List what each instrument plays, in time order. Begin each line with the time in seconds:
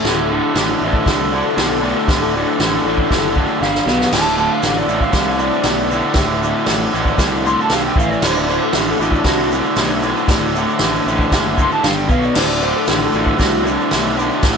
Already playing: electric slide guitar A4
0.04 picked electric bass D1, overdriven electric guitar D2 A2 D3, transistor combo organ D4 F#4 A4, snare
0.30 overdriven electric guitar D2 A2 D3
0.55 picked electric bass A1, overdriven electric guitar D2 A2 D3, snare, open hi-hat
0.81 picked electric bass A1, overdriven electric guitar D2 A2 D3, electric slide guitar D5
0.93 electric slide guitar A4, kick
1.06 picked electric bass C2, overdriven electric guitar D2 A2 D3, electric slide guitar F4, kick, snare, open hi-hat
1.18 electric slide guitar A4
1.32 overdriven electric guitar D2 A2 D3, electric slide guitar D5
1.45 electric slide guitar A4
1.56 picked electric bass B1, overdriven electric guitar D2 A2 D3, electric slide guitar F4, snare, open hi-hat
1.69 electric slide guitar A4
1.81 overdriven electric guitar D2 A2 D3, electric slide guitar D5
1.94 electric slide guitar A4
2.06 picked electric bass D1, overdriven electric guitar D2, electric slide guitar F4, kick, snare, open hi-hat
2.10 overdriven electric guitar A2 D3
2.19 electric slide guitar A4
2.33 overdriven electric guitar D2 A2 D3, electric slide guitar D5
2.43 electric slide guitar A4
2.57 picked electric bass A1, overdriven electric guitar D2 A2 D3, electric slide guitar F4, snare, open hi-hat
2.70 electric slide guitar A4
2.83 picked electric bass A1, overdriven electric guitar D2 A2, electric slide guitar A4
2.87 overdriven electric guitar D3
2.98 kick
3.11 picked electric bass F#1, overdriven electric guitar D2 A2 D3, kick, snare, open hi-hat
3.36 overdriven electric guitar D2 A2 D3, kick
3.61 picked electric bass G1, overdriven electric guitar G2 D3 G3, electric slide guitar F5, snare
3.75 snare
3.86 picked electric bass B1, overdriven electric guitar B2 F#3 B3, snare
4.01 snare
4.12 picked electric bass D1, overdriven electric guitar D2 A2 D3, transistor combo organ F#4 A4 D5, electric slide guitar A5, snare, splash, crash, shaker
4.26 shaker
4.37 overdriven electric guitar D2 A2 D3, electric slide guitar A5, shaker
4.52 electric slide guitar F5
4.62 picked electric bass A1, overdriven electric guitar D2 A2 D3, snare, open hi-hat, shaker
4.76 electric slide guitar D5, shaker
4.88 picked electric bass A1, overdriven electric guitar D2 A2 D3, shaker
5.01 electric slide guitar F5, kick, shaker
5.12 picked electric bass C2, overdriven electric guitar D2 A2 D3, kick, snare, open hi-hat, shaker
5.37 overdriven electric guitar D2 A2 D3, electric slide guitar D5, shaker
5.53 shaker
5.63 picked electric bass B1, overdriven electric guitar D2 A2 D3, snare, open hi-hat, shaker
5.78 shaker
5.91 overdriven electric guitar D2 A2 D3, shaker
6.13 picked electric bass D1, overdriven electric guitar D2 A2, kick, snare, open hi-hat, shaker
6.18 overdriven electric guitar D3
6.30 shaker
6.43 overdriven electric guitar D2 A2 D3, shaker
6.66 picked electric bass A1, overdriven electric guitar D2 A2 D3, snare, open hi-hat, shaker
6.82 shaker
6.93 picked electric bass A1, overdriven electric guitar D2 A2 D3, shaker
7.05 kick, shaker
7.18 picked electric bass C2, overdriven electric guitar D2 A2 D3, kick, snare, open hi-hat, shaker
7.34 shaker
7.45 overdriven electric guitar D2 A2 D3, electric slide guitar C6, shaker
7.60 electric slide guitar A5, shaker
7.69 picked electric bass B1, overdriven electric guitar D2 A2, electric slide guitar F5, snare, open hi-hat, shaker
7.73 overdriven electric guitar D3
7.85 electric slide guitar G5, shaker
7.96 picked electric bass A1, overdriven electric guitar A2 E3 A3, electric slide guitar F5, kick, shaker
8.09 electric slide guitar D5, shaker
8.22 picked electric bass D1, overdriven electric guitar D2 A2 D3, transistor combo organ F#4 A4 D5, snare, crash, shaker
8.26 electric slide guitar C5
8.37 electric slide guitar D5, shaker
8.48 overdriven electric guitar D2 A2 D3, electric slide guitar C5, shaker
8.64 electric slide guitar A4
8.73 picked electric bass A1, overdriven electric guitar D2 A2 D3, snare, open hi-hat, shaker
8.78 electric slide guitar F4
8.88 electric slide guitar A4, shaker
8.99 picked electric bass A1, overdriven electric guitar D2 A2 D3, electric slide guitar F4, shaker
9.12 kick, shaker
9.24 picked electric bass C2, overdriven electric guitar D2 A2 D3, electric slide guitar F#4, kick, snare, open hi-hat, shaker
9.39 shaker
9.51 overdriven electric guitar D2 A2 D3, shaker
9.64 shaker
9.76 picked electric bass B1, overdriven electric guitar D2 A2 D3, snare, open hi-hat, shaker
9.88 shaker
10.02 overdriven electric guitar D2 A2 D3, shaker
10.17 shaker
10.28 picked electric bass D1, overdriven electric guitar D2 A2 D3, kick, snare, open hi-hat, shaker
10.43 shaker
10.55 overdriven electric guitar D2 A2 D3, shaker
10.69 shaker
10.79 picked electric bass A1, overdriven electric guitar D2 A2, snare, open hi-hat, shaker
10.83 overdriven electric guitar D3
10.95 shaker
11.07 picked electric bass A1, overdriven electric guitar D2 A2 D3, shaker
11.19 kick, shaker
11.31 picked electric bass F#1, overdriven electric guitar D2 A2 D3, kick, snare, open hi-hat, shaker
11.44 shaker
11.57 overdriven electric guitar D2 A2 D3, kick, shaker
11.62 electric slide guitar C6
11.71 electric slide guitar A5, shaker
11.83 picked electric bass G1, overdriven electric guitar G2 D3 G3, electric slide guitar F5, snare, open hi-hat, shaker
11.96 electric slide guitar G5, shaker
12.09 picked electric bass B1, overdriven electric guitar B2 F#3 B3, electric slide guitar F5, kick, shaker
12.23 electric slide guitar D5, shaker
12.35 picked electric bass D1, overdriven electric guitar D2 A2 D3, transistor combo organ D4 F#4 A4, electric slide guitar C5, snare, crash, shaker
12.48 electric slide guitar D5, shaker
12.61 overdriven electric guitar D2 A2 D3, electric slide guitar C5, shaker
12.76 electric slide guitar A4
12.87 picked electric bass A1, overdriven electric guitar D2 A2 D3, snare, open hi-hat, shaker
12.92 electric slide guitar F4
13.00 electric slide guitar A4, shaker
13.13 picked electric bass A1, overdriven electric guitar D2 A2 D3, electric slide guitar F4, shaker
13.26 kick, shaker
13.37 picked electric bass C2, overdriven electric guitar D2 A2 D3, electric slide guitar F#4, kick, snare, open hi-hat, shaker
13.52 shaker
13.64 overdriven electric guitar D2 A2 D3, shaker
13.80 shaker
13.91 picked electric bass B1, overdriven electric guitar D2 A2 D3, snare, open hi-hat, shaker
14.06 shaker
14.17 overdriven electric guitar D2 A2 D3, shaker
14.31 shaker
14.42 picked electric bass D1, overdriven electric guitar D2 A2 D3, kick, snare, open hi-hat, shaker